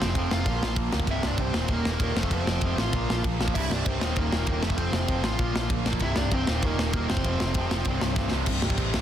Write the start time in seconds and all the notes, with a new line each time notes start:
Already playing: F2 C3 F3 C4 C5
0.01 F1 F2 C3 F3, snare
0.15 F1 F2 C3 F3, kick, ride
0.31 F1 F2 C3 F3 F4 F5, snare
0.46 A#1 A#2 F3 A#3, kick, ride
0.63 A#1 A#2 F3 A#3, snare
0.76 A#1 A#2 F3 A#3, kick, ride
0.93 D2 A#2 F3 A#3, snare
1.00 kick
1.07 C1 C2 G2 C3 E5, kick, ride
1.12 E4
1.23 C1 C2 G2 C3 D4 D5, snare
1.38 C1 C2 G2 C3 C4 C5, kick, ride
1.54 D#1 D#2 A#2 D#3, snare
1.68 D#1 D#2 A#2 D#3 A#3, kick, ride
1.73 A#4
1.85 D#1 D#2 A#2 D#3, snare
1.93 A#3 A#4
2.00 D#1 D#2 A#2 D#3, kick, ride
2.14 F1 F2 C3 F3, snare
2.19 A3 A4
2.23 kick
2.31 F1 F2 C3 F3 C4 C5, kick, ride
2.47 F1 F2 C3 F3, snare
2.61 F1 F2 C3 F3, kick, ride
2.77 A1 F2 C3 F3 F4 F5, snare
2.93 A#1 A#2 F3 A#3, kick, ride
3.09 A#1 A#2 F3 A#3, snare
3.24 A#1 A#2 F3 A#3, kick, ride
3.39 A#1 A#2 F3 A#3, snare
3.48 kick
3.54 C1 C2 G2 C3 E4 E5, kick, crash
3.70 C1 C2 G2 C3 D4 D5, snare
3.85 C1 C2 G2 C3 C4 C5, kick, ride
4.00 D#1 D#2 A#2 D#3, snare
4.16 D#1 D#2 A#2 D#3 A#3 A#4, kick, ride
4.32 D#1 D#2 A#2 D#3, snare
4.37 A#3 A#4
4.47 D#1 D#2 A#2 D#3, kick, ride
4.52 D#3
4.61 F1 F2 C3 F3 A4, snare
4.66 A3
4.70 kick
4.77 F1 F2 C3 F3 C4 C5, kick, ride
4.92 F1 F2 C3 F3, snare
5.08 F1 F2 C3 F3, kick, ride
5.23 A1 F2 C3 F3 F4 F5, snare
5.38 A#1 A#2 F3 A#3, kick, ride
5.53 A#1 A#2 F3 A#3, snare
5.70 A#1 A#2 F3 A#3, kick, ride
5.85 A#1 A#2 F3 A#3, snare
5.93 kick
5.99 C1 C2 G2 E4, kick, ride
6.04 C3 E5
6.15 C1 C2 C3 D4 D5, snare
6.19 G2
6.31 C1 C2 G2 C3 C4 C5, kick, ride
6.47 D#1 D#2 A#2 D#3, snare
6.62 D#1 D#2 A#2 D#3 A#3, kick, ride
6.66 A#4
6.78 D#1 D#2 A#2, snare
6.83 D#3
6.93 D#1 D#2 D#3 A#3 A#4, kick, ride
6.97 D#2 A#2
7.10 F1 F2 C3 F3 C4 C5, snare
7.17 kick
7.24 F1 F2 C3 F3, kick, ride
7.40 F1 F2 C3 F3, snare
7.54 F1 F2 C3 F3, kick, ride
7.59 F3
7.70 F1 F2 C3 F3, snare
7.85 C1 C2 G2 C3, kick, ride
8.01 C1 C2 G2 C3, snare
8.16 C1 C2 G2 C3, kick, snare
8.31 C1 C2 G2 C3, snare
8.46 C1 C2 G2 C3, kick, crash
8.62 C1 C2 G2 C3, snare
8.70 kick
8.78 A1 C2 G2 C3, kick, crash
8.94 C1 C2 G2 C3, snare